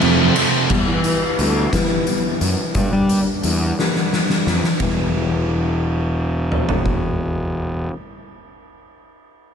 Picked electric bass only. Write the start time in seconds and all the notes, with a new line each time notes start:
0.03 F2
0.71 E2
0.88 E3
1.39 D2
2.41 F#2
2.75 G2
2.93 G3
3.44 E2
4.47 F2
4.80 E1